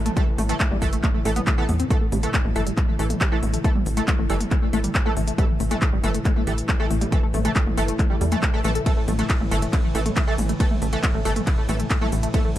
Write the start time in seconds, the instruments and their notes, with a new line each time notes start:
Already playing: analog synth bass A1, synth drone A2 E3
0.06 synth arpeggio sound A3, closed hi-hat, mid tom
0.17 analog polysynth E3 A3 A4, synth arpeggio sound G3, kick, closed hi-hat
0.38 analog synth bass A1, synth arpeggio sound A3, mid tom, open hi-hat
0.49 analog polysynth E3 A3 A4, synth arpeggio sound A3, closed hi-hat
0.60 synth arpeggio sound A3, kick, clap, closed hi-hat
0.71 analog synth bass A1, synth arpeggio sound G3, mid tom
0.82 analog synth bass G1, analog polysynth E3 A3 A4, kick, open hi-hat
0.93 synth arpeggio sound A3, closed hi-hat
1.04 synth arpeggio sound A3, kick, clap, closed hi-hat, mid tom
1.14 synth arpeggio sound A3
1.25 analog synth bass A1, analog polysynth E3 A3 A4, synth arpeggio sound A3, open hi-hat
1.36 synth arpeggio sound B3, closed hi-hat, mid tom
1.47 synth arpeggio sound A3, kick, clap, closed hi-hat
1.58 analog polysynth E3 A3 A4, synth arpeggio sound B3
1.69 analog synth bass E2, mid tom, open hi-hat
1.80 synth arpeggio sound C4, closed hi-hat
1.90 synth drone A2 E3, analog polysynth E3 A3 A4, synth arpeggio sound A3, kick, closed hi-hat
2.01 synth arpeggio sound A3
2.12 analog synth bass A1, synth arpeggio sound G3, mid tom, open hi-hat
2.23 analog polysynth E3 A3 A4, closed hi-hat
2.34 synth arpeggio sound A3, kick, clap, closed hi-hat
2.45 analog synth bass A1, synth arpeggio sound A3, mid tom
2.56 analog synth bass G1, analog polysynth E3 A3 A4, synth arpeggio sound A3, open hi-hat
2.67 synth arpeggio sound G3, closed hi-hat
2.77 kick, clap, closed hi-hat, mid tom
2.88 synth arpeggio sound A3
2.99 analog synth bass A1, analog polysynth E3 A3 A4, synth arpeggio sound A3, open hi-hat
3.10 synth arpeggio sound A3, closed hi-hat, mid tom
3.21 synth arpeggio sound G3, kick, clap, closed hi-hat
3.32 analog polysynth E3 A3 A4
3.43 analog synth bass A1, synth arpeggio sound A3, mid tom, open hi-hat
3.54 synth arpeggio sound A3, closed hi-hat
3.64 analog polysynth E3 A3 A4, synth arpeggio sound A3, kick, closed hi-hat
3.75 synth arpeggio sound G3, mid tom
3.86 analog synth bass A1, open hi-hat
3.97 analog polysynth E3 A3 A4, synth arpeggio sound A3, closed hi-hat
4.08 synth arpeggio sound A3, kick, clap, closed hi-hat, mid tom
4.19 analog synth bass A1, synth arpeggio sound A3
4.30 analog synth bass G1, analog polysynth E3 A3 A4, synth arpeggio sound G3, open hi-hat
4.41 closed hi-hat, mid tom
4.51 synth arpeggio sound A3, kick, clap, closed hi-hat
4.62 synth arpeggio sound A3
4.73 analog synth bass A1, analog polysynth E3 A3 A4, synth arpeggio sound A3, mid tom, open hi-hat
4.84 synth arpeggio sound G3, closed hi-hat
4.95 kick, clap, closed hi-hat
5.06 analog polysynth E3 A3 A4, synth arpeggio sound A3, mid tom
5.17 analog synth bass A1, synth arpeggio sound A3, open hi-hat
5.27 synth arpeggio sound A3, closed hi-hat
5.38 analog polysynth E3 A3 A4, synth arpeggio sound G3, kick, closed hi-hat, mid tom
5.60 analog synth bass A1, synth arpeggio sound A3, open hi-hat
5.71 analog polysynth E3 A3 A4, synth arpeggio sound A3, closed hi-hat, mid tom
5.82 synth arpeggio sound A3, kick, clap, closed hi-hat
5.93 analog synth bass A1, synth arpeggio sound G3
6.04 analog synth bass G1, analog polysynth E3 A3 A4, mid tom, open hi-hat
6.14 synth arpeggio sound A3, closed hi-hat
6.25 synth arpeggio sound A3, kick, clap, closed hi-hat
6.36 synth arpeggio sound A3, mid tom
6.47 analog synth bass A1, analog polysynth E3 A3 A4, synth arpeggio sound G3, open hi-hat
6.58 closed hi-hat
6.69 synth arpeggio sound A3, kick, clap, closed hi-hat, mid tom
6.80 analog polysynth E3 A3 A4, synth arpeggio sound A3
6.91 analog synth bass A1, synth arpeggio sound A3, open hi-hat
7.01 synth arpeggio sound G3, closed hi-hat, mid tom
7.12 analog polysynth E3 A3 A4, kick, closed hi-hat
7.23 synth arpeggio sound A3
7.34 analog synth bass A1, synth arpeggio sound A3, mid tom, open hi-hat
7.45 analog polysynth E3 A3 A4, synth arpeggio sound A3, closed hi-hat
7.56 synth arpeggio sound G3, kick, clap, closed hi-hat
7.67 analog synth bass A1, mid tom
7.77 analog synth bass G1, analog polysynth E3 A3 A4, synth arpeggio sound A3, open hi-hat
7.88 synth arpeggio sound A3, closed hi-hat
7.99 synth arpeggio sound A3, kick, clap, closed hi-hat, mid tom
8.10 synth arpeggio sound G3
8.21 analog synth bass E2, synth arpeggio sound G3, open hi-hat
8.32 analog polysynth E3 A3 A4, synth arpeggio sound A3, closed hi-hat, mid tom
8.43 synth arpeggio sound A3, kick, clap, closed hi-hat
8.54 analog polysynth E3 A3 A4
8.64 analog synth bass A1, analog polysynth E3 A3 A4, synth arpeggio sound A3, mid tom, open hi-hat
8.75 synth arpeggio sound A4, closed hi-hat
8.86 analog polysynth E3 A3 A4, synth arpeggio sound A3, kick, closed hi-hat, ride
8.97 synth arpeggio sound A3
9.08 analog synth bass A1, synth arpeggio sound A3, mid tom, open hi-hat
9.19 analog polysynth E3 A3 A4, synth arpeggio sound A3, closed hi-hat
9.30 kick, clap, closed hi-hat, ride
9.40 analog synth bass A1, synth arpeggio sound A3, mid tom
9.51 analog synth bass G1, analog polysynth E3 A3 A4, synth arpeggio sound A3, open hi-hat
9.62 synth arpeggio sound A3, closed hi-hat
9.73 synth arpeggio sound A3, kick, clap, closed hi-hat, mid tom, ride
9.95 analog synth bass A1, analog polysynth E3 A3 A4, synth arpeggio sound A3, open hi-hat
10.06 synth arpeggio sound A3, closed hi-hat, mid tom
10.17 synth arpeggio sound A3, kick, clap, closed hi-hat, ride
10.28 analog polysynth E3 A3 A4, synth arpeggio sound A3
10.38 analog synth bass A1, mid tom, open hi-hat
10.49 synth arpeggio sound A3, closed hi-hat
10.60 analog polysynth E3 A3 A4, synth arpeggio sound A3, kick, closed hi-hat, ride
10.71 synth arpeggio sound A3, mid tom
10.82 analog synth bass A1, synth arpeggio sound A3, open hi-hat
10.93 analog polysynth E3 A3 A4, closed hi-hat
11.04 synth arpeggio sound A3, kick, clap, closed hi-hat, mid tom, ride
11.14 analog synth bass A1, synth arpeggio sound A3
11.25 analog synth bass G1, analog polysynth E3 A3 A4, synth arpeggio sound A3, open hi-hat
11.36 synth arpeggio sound A3, closed hi-hat, mid tom
11.47 kick, clap, closed hi-hat, ride
11.58 synth arpeggio sound A3
11.69 analog synth bass A1, analog polysynth E3 A3 A4, synth arpeggio sound A3, mid tom, open hi-hat
11.80 synth arpeggio sound A3, closed hi-hat
11.91 synth arpeggio sound A3, kick, clap, closed hi-hat, ride
12.01 analog polysynth E3 A3 A4, mid tom
12.12 analog synth bass A1, synth arpeggio sound A3, open hi-hat
12.23 synth arpeggio sound A3, closed hi-hat
12.34 analog polysynth E3 A3 A4, synth arpeggio sound A3, kick, closed hi-hat, mid tom, ride
12.45 synth arpeggio sound A3